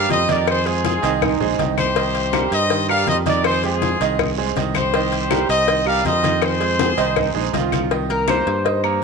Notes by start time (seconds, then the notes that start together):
Already playing: G3 G4 A#4
0.10 F2 C5 D#5, cowbell, high conga, short guiro
0.28 D#3 D#4 A#4 D5 D#5, cowbell, high conga, short guiro
0.47 G#4 C5, cowbell, high conga, long guiro, claves
0.66 G#3 F4 G#4 C5, cowbell, high conga
0.85 cowbell, high conga, short guiro
1.02 C2 D#3 C4 D#4 D#5, cowbell, short guiro
1.22 D#4, cowbell, high conga, low conga, long guiro, claves
1.40 A#1 G#3 G#4 C5, high conga, low conga
1.59 C2 D#3 D#4 D#5, cowbell, high conga, short guiro
1.77 G4 C5, cowbell, high conga, short guiro, claves
1.96 D#3 D#4 D#5, cowbell, high conga, long guiro
2.14 cowbell, high conga
2.33 G3 G4 A#4, cowbell, high conga, short guiro, claves
2.51 G2 C5 D#5, cowbell, short guiro
2.70 D#3 D#4 D#5, cowbell, high conga, long guiro
2.89 G3 G4 A#4 D5 F5, high conga, claves
3.07 F2 C5 D#5, cowbell, high conga, short guiro
3.26 D#3 D#4 A#4 D5 D#5, cowbell, high conga, short guiro
3.44 G#4 C5, cowbell, high conga, long guiro, claves
3.63 G#3 F4 G#4 C5, cowbell, high conga
3.82 cowbell, high conga, short guiro
4.00 C2 D#3 D#4 D#5, cowbell, high conga, short guiro
4.19 cowbell, high conga, low conga, long guiro, claves
4.37 G#3 G#4 C5, high conga
4.56 C2 D#3 D#4 D#5, cowbell, high conga, short guiro
4.74 G4 C5, cowbell, high conga, short guiro, claves
4.94 D#3 D#4 D#5, cowbell, long guiro
5.12 cowbell, high conga
5.30 G3 G4 A#4, cowbell, high conga, short guiro, claves
5.49 C2 C5 D#5, cowbell, short guiro
5.67 D#3 D#4 D#5, cowbell, high conga, long guiro
5.86 G3 G4 A#4 D5 F5, high conga, claves
6.05 F2 C5 D#5, cowbell, high conga, short guiro
6.23 D#3 D#4 D#5, cowbell, high conga, short guiro
6.42 G#4 C5, cowbell, high conga, long guiro, claves
6.60 G#3 G#4 C5, cowbell, high conga
6.79 C4, cowbell, high conga, short guiro
6.97 C2 D#3 C4 D#4 D#5, cowbell, high conga, short guiro
7.16 D#4, cowbell, high conga, low conga, long guiro, claves
7.34 A#1 G#3 D#4 G#4 C5, high conga
7.53 C2 D#3 D#4 F4 D#5, cowbell, high conga, short guiro
7.72 cowbell, high conga, short guiro, claves
7.91 D#3 D#4 D#5, cowbell, high conga
8.09 A#4, cowbell, high conga
8.27 A#3 A#4 C5 A#5, cowbell, high conga, claves
8.47 G2, cowbell
8.65 D#4 D#5 D#6, cowbell, high conga
8.83 A#3 A#4 A#5, high conga, claves